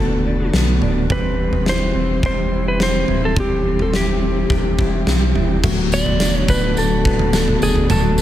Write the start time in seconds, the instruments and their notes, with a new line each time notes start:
Already playing: sub bass E1, tonewheel organ D3 A3 B3 F#4, clean electric guitar B3 D4 A4, electric slide guitar A4
0.25 clean electric guitar D4
0.53 sub bass B1, clean electric guitar B3, snare
0.81 sub bass D1, clean electric guitar D4, floor tom
1.10 sub bass E1, tonewheel organ E3 G3 C4 G4, clean electric guitar C4, electric slide guitar B4, kick, floor tom
1.38 clean electric guitar C4
1.52 sub bass E1, floor tom
1.66 clean electric guitar E4, electric slide guitar C5, snare
1.95 sub bass E1, clean electric guitar C4
2.23 sub bass E1, clean electric guitar G4, electric slide guitar C5, kick, floor tom
2.52 clean electric guitar E4
2.68 electric slide guitar B4
2.80 clean electric guitar C4, electric slide guitar C5, snare
3.08 sub bass D1, clean electric guitar E4, floor tom
3.25 electric slide guitar A4
3.36 sub bass E1, clean electric guitar C4, electric slide guitar G4, kick, floor tom
3.65 clean electric guitar C4
3.79 electric slide guitar A4, floor tom
3.94 clean electric guitar E4, electric slide guitar G4, snare
4.22 clean electric guitar C4
4.50 sub bass E1, clean electric guitar G4, kick, floor tom
4.79 clean electric guitar E4, kick
5.06 sub bass B1, clean electric guitar C4, snare
5.35 sub bass E1, clean electric guitar E4, floor tom
5.63 sub bass D1, tonewheel organ D3 A3 B3 F#4, clean electric guitar F#3, kick, floor tom, crash, tambourine
5.92 clean electric guitar B3, electric slide guitar D5, tambourine
6.06 sub bass E1, floor tom
6.20 clean electric guitar D4, snare, tambourine
6.35 electric slide guitar C#5
6.48 sub bass D1, clean electric guitar A4, electric slide guitar B4, kick, tambourine
6.77 sub bass D1, clean electric guitar D4, electric slide guitar A4, tambourine
7.05 clean electric guitar B3, kick
7.19 floor tom
7.33 clean electric guitar A4, snare, tambourine
7.48 floor tom
7.61 sub bass E1, clean electric guitar D4, electric slide guitar G#4, tambourine
7.76 floor tom
7.90 sub bass D1, clean electric guitar F#3, electric slide guitar A4, floor tom, tambourine
8.18 clean electric guitar B3, tambourine